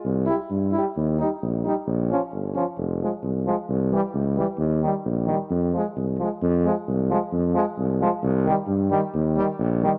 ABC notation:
X:1
M:2/4
L:1/8
Q:"Swing 16ths" 1/4=132
K:Fm
V:1 name="French horn" clef=bass
z =E z E | z E z E | z D z D | z A, z A, |
z G, z G, | z G, z G, | z A, z A, | z A, z A, |
z A, z A, | z G, z G, | z G, z G, |]
V:2 name="Euphonium" clef=bass
z G, z G, | z G, z G, | z F, z F, | z F, z F, |
z =E, z E, | z E, z E, | z F, z F, | z F, z F, |
z F, z F, | z E, z E, | z E, z E, |]
V:3 name="Tuba" clef=bass
C,,2 G,,2 | E,,2 B,,,2 | B,,,2 G,,,2 | F,,,2 C,,2 |
C,,2 D,,2 | E,,2 B,,,2 | F,,2 C,,2 | F,,2 C,,2 |
F,,2 C,,2 | C,,2 G,,2 | E,,2 B,,,2 |]